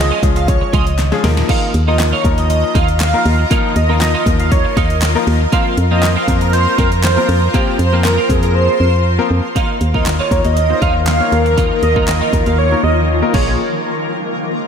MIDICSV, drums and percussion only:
0, 0, Header, 1, 2, 480
1, 0, Start_track
1, 0, Tempo, 504202
1, 1419, Time_signature, 4, 2, 24, 8
1, 13970, End_track
2, 0, Start_track
2, 0, Title_t, "Drums"
2, 218, Note_on_c, 9, 36, 97
2, 221, Note_on_c, 9, 42, 86
2, 313, Note_off_c, 9, 36, 0
2, 316, Note_off_c, 9, 42, 0
2, 344, Note_on_c, 9, 42, 64
2, 439, Note_off_c, 9, 42, 0
2, 459, Note_on_c, 9, 42, 94
2, 460, Note_on_c, 9, 36, 109
2, 554, Note_off_c, 9, 42, 0
2, 555, Note_off_c, 9, 36, 0
2, 699, Note_on_c, 9, 36, 107
2, 700, Note_on_c, 9, 42, 71
2, 795, Note_off_c, 9, 36, 0
2, 795, Note_off_c, 9, 42, 0
2, 826, Note_on_c, 9, 42, 59
2, 921, Note_off_c, 9, 42, 0
2, 940, Note_on_c, 9, 38, 69
2, 940, Note_on_c, 9, 39, 78
2, 940, Note_on_c, 9, 42, 85
2, 1035, Note_off_c, 9, 38, 0
2, 1035, Note_off_c, 9, 39, 0
2, 1035, Note_off_c, 9, 42, 0
2, 1067, Note_on_c, 9, 38, 72
2, 1162, Note_off_c, 9, 38, 0
2, 1179, Note_on_c, 9, 38, 110
2, 1180, Note_on_c, 9, 46, 70
2, 1275, Note_off_c, 9, 38, 0
2, 1275, Note_off_c, 9, 46, 0
2, 1307, Note_on_c, 9, 38, 105
2, 1402, Note_off_c, 9, 38, 0
2, 1420, Note_on_c, 9, 36, 108
2, 1420, Note_on_c, 9, 49, 86
2, 1515, Note_off_c, 9, 36, 0
2, 1515, Note_off_c, 9, 49, 0
2, 1658, Note_on_c, 9, 42, 80
2, 1753, Note_off_c, 9, 42, 0
2, 1899, Note_on_c, 9, 39, 124
2, 1899, Note_on_c, 9, 42, 104
2, 1904, Note_on_c, 9, 38, 96
2, 1994, Note_off_c, 9, 39, 0
2, 1994, Note_off_c, 9, 42, 0
2, 2000, Note_off_c, 9, 38, 0
2, 2138, Note_on_c, 9, 36, 100
2, 2142, Note_on_c, 9, 42, 84
2, 2233, Note_off_c, 9, 36, 0
2, 2237, Note_off_c, 9, 42, 0
2, 2265, Note_on_c, 9, 42, 64
2, 2360, Note_off_c, 9, 42, 0
2, 2379, Note_on_c, 9, 42, 88
2, 2475, Note_off_c, 9, 42, 0
2, 2619, Note_on_c, 9, 42, 77
2, 2620, Note_on_c, 9, 36, 110
2, 2715, Note_off_c, 9, 36, 0
2, 2715, Note_off_c, 9, 42, 0
2, 2746, Note_on_c, 9, 42, 59
2, 2841, Note_off_c, 9, 42, 0
2, 2859, Note_on_c, 9, 39, 124
2, 2859, Note_on_c, 9, 42, 91
2, 2861, Note_off_c, 9, 39, 0
2, 2861, Note_on_c, 9, 39, 80
2, 2864, Note_on_c, 9, 38, 100
2, 2955, Note_off_c, 9, 42, 0
2, 2956, Note_off_c, 9, 39, 0
2, 2959, Note_off_c, 9, 38, 0
2, 3099, Note_on_c, 9, 46, 70
2, 3195, Note_off_c, 9, 46, 0
2, 3340, Note_on_c, 9, 36, 110
2, 3340, Note_on_c, 9, 42, 99
2, 3435, Note_off_c, 9, 36, 0
2, 3435, Note_off_c, 9, 42, 0
2, 3578, Note_on_c, 9, 42, 86
2, 3673, Note_off_c, 9, 42, 0
2, 3819, Note_on_c, 9, 39, 124
2, 3819, Note_on_c, 9, 42, 105
2, 3820, Note_off_c, 9, 39, 0
2, 3820, Note_on_c, 9, 39, 79
2, 3825, Note_on_c, 9, 38, 100
2, 3914, Note_off_c, 9, 42, 0
2, 3916, Note_off_c, 9, 39, 0
2, 3920, Note_off_c, 9, 38, 0
2, 4058, Note_on_c, 9, 36, 103
2, 4062, Note_on_c, 9, 42, 90
2, 4153, Note_off_c, 9, 36, 0
2, 4157, Note_off_c, 9, 42, 0
2, 4185, Note_on_c, 9, 42, 62
2, 4280, Note_off_c, 9, 42, 0
2, 4299, Note_on_c, 9, 42, 86
2, 4300, Note_on_c, 9, 36, 110
2, 4394, Note_off_c, 9, 42, 0
2, 4395, Note_off_c, 9, 36, 0
2, 4540, Note_on_c, 9, 36, 107
2, 4540, Note_on_c, 9, 42, 72
2, 4635, Note_off_c, 9, 36, 0
2, 4635, Note_off_c, 9, 42, 0
2, 4666, Note_on_c, 9, 42, 57
2, 4761, Note_off_c, 9, 42, 0
2, 4778, Note_on_c, 9, 39, 125
2, 4779, Note_on_c, 9, 42, 87
2, 4780, Note_off_c, 9, 39, 0
2, 4780, Note_on_c, 9, 39, 77
2, 4784, Note_on_c, 9, 38, 104
2, 4874, Note_off_c, 9, 42, 0
2, 4875, Note_off_c, 9, 39, 0
2, 4879, Note_off_c, 9, 38, 0
2, 5020, Note_on_c, 9, 46, 72
2, 5115, Note_off_c, 9, 46, 0
2, 5260, Note_on_c, 9, 36, 111
2, 5260, Note_on_c, 9, 42, 94
2, 5355, Note_off_c, 9, 36, 0
2, 5355, Note_off_c, 9, 42, 0
2, 5498, Note_on_c, 9, 42, 82
2, 5593, Note_off_c, 9, 42, 0
2, 5739, Note_on_c, 9, 39, 122
2, 5739, Note_on_c, 9, 42, 107
2, 5740, Note_off_c, 9, 39, 0
2, 5740, Note_on_c, 9, 39, 79
2, 5744, Note_on_c, 9, 38, 98
2, 5834, Note_off_c, 9, 42, 0
2, 5835, Note_off_c, 9, 39, 0
2, 5840, Note_off_c, 9, 38, 0
2, 5978, Note_on_c, 9, 36, 100
2, 5981, Note_on_c, 9, 42, 89
2, 6073, Note_off_c, 9, 36, 0
2, 6076, Note_off_c, 9, 42, 0
2, 6103, Note_on_c, 9, 42, 63
2, 6199, Note_off_c, 9, 42, 0
2, 6219, Note_on_c, 9, 42, 92
2, 6314, Note_off_c, 9, 42, 0
2, 6460, Note_on_c, 9, 36, 106
2, 6460, Note_on_c, 9, 42, 71
2, 6555, Note_off_c, 9, 36, 0
2, 6555, Note_off_c, 9, 42, 0
2, 6586, Note_on_c, 9, 42, 62
2, 6681, Note_off_c, 9, 42, 0
2, 6699, Note_on_c, 9, 39, 127
2, 6700, Note_off_c, 9, 39, 0
2, 6700, Note_on_c, 9, 39, 79
2, 6700, Note_on_c, 9, 42, 85
2, 6704, Note_on_c, 9, 38, 101
2, 6795, Note_off_c, 9, 39, 0
2, 6795, Note_off_c, 9, 42, 0
2, 6799, Note_off_c, 9, 38, 0
2, 6940, Note_on_c, 9, 46, 73
2, 7035, Note_off_c, 9, 46, 0
2, 7179, Note_on_c, 9, 36, 107
2, 7180, Note_on_c, 9, 42, 94
2, 7275, Note_off_c, 9, 36, 0
2, 7275, Note_off_c, 9, 42, 0
2, 7418, Note_on_c, 9, 42, 84
2, 7514, Note_off_c, 9, 42, 0
2, 7659, Note_on_c, 9, 39, 121
2, 7659, Note_on_c, 9, 42, 102
2, 7665, Note_on_c, 9, 38, 98
2, 7754, Note_off_c, 9, 42, 0
2, 7755, Note_off_c, 9, 39, 0
2, 7760, Note_off_c, 9, 38, 0
2, 7897, Note_on_c, 9, 36, 101
2, 7901, Note_on_c, 9, 42, 86
2, 7993, Note_off_c, 9, 36, 0
2, 7996, Note_off_c, 9, 42, 0
2, 8024, Note_on_c, 9, 42, 62
2, 8119, Note_off_c, 9, 42, 0
2, 9099, Note_on_c, 9, 36, 104
2, 9100, Note_on_c, 9, 42, 94
2, 9195, Note_off_c, 9, 36, 0
2, 9195, Note_off_c, 9, 42, 0
2, 9338, Note_on_c, 9, 42, 77
2, 9433, Note_off_c, 9, 42, 0
2, 9467, Note_on_c, 9, 36, 87
2, 9562, Note_off_c, 9, 36, 0
2, 9578, Note_on_c, 9, 42, 95
2, 9579, Note_on_c, 9, 39, 115
2, 9584, Note_on_c, 9, 38, 90
2, 9673, Note_off_c, 9, 42, 0
2, 9674, Note_off_c, 9, 39, 0
2, 9679, Note_off_c, 9, 38, 0
2, 9818, Note_on_c, 9, 36, 95
2, 9821, Note_on_c, 9, 42, 82
2, 9913, Note_off_c, 9, 36, 0
2, 9917, Note_off_c, 9, 42, 0
2, 9944, Note_on_c, 9, 42, 61
2, 10040, Note_off_c, 9, 42, 0
2, 10060, Note_on_c, 9, 42, 85
2, 10155, Note_off_c, 9, 42, 0
2, 10300, Note_on_c, 9, 36, 99
2, 10300, Note_on_c, 9, 42, 71
2, 10395, Note_off_c, 9, 36, 0
2, 10395, Note_off_c, 9, 42, 0
2, 10539, Note_on_c, 9, 39, 119
2, 10540, Note_on_c, 9, 42, 81
2, 10545, Note_on_c, 9, 38, 97
2, 10634, Note_off_c, 9, 39, 0
2, 10635, Note_off_c, 9, 42, 0
2, 10640, Note_off_c, 9, 38, 0
2, 10780, Note_on_c, 9, 42, 64
2, 10875, Note_off_c, 9, 42, 0
2, 10909, Note_on_c, 9, 42, 58
2, 11005, Note_off_c, 9, 42, 0
2, 11020, Note_on_c, 9, 36, 98
2, 11020, Note_on_c, 9, 42, 91
2, 11115, Note_off_c, 9, 36, 0
2, 11116, Note_off_c, 9, 42, 0
2, 11259, Note_on_c, 9, 42, 77
2, 11354, Note_off_c, 9, 42, 0
2, 11388, Note_on_c, 9, 36, 88
2, 11483, Note_off_c, 9, 36, 0
2, 11499, Note_on_c, 9, 39, 118
2, 11499, Note_on_c, 9, 42, 100
2, 11505, Note_on_c, 9, 38, 93
2, 11594, Note_off_c, 9, 42, 0
2, 11595, Note_off_c, 9, 39, 0
2, 11600, Note_off_c, 9, 38, 0
2, 11738, Note_on_c, 9, 36, 95
2, 11742, Note_on_c, 9, 42, 82
2, 11833, Note_off_c, 9, 36, 0
2, 11837, Note_off_c, 9, 42, 0
2, 11864, Note_on_c, 9, 42, 60
2, 11959, Note_off_c, 9, 42, 0
2, 12700, Note_on_c, 9, 36, 111
2, 12700, Note_on_c, 9, 49, 86
2, 12795, Note_off_c, 9, 36, 0
2, 12795, Note_off_c, 9, 49, 0
2, 13970, End_track
0, 0, End_of_file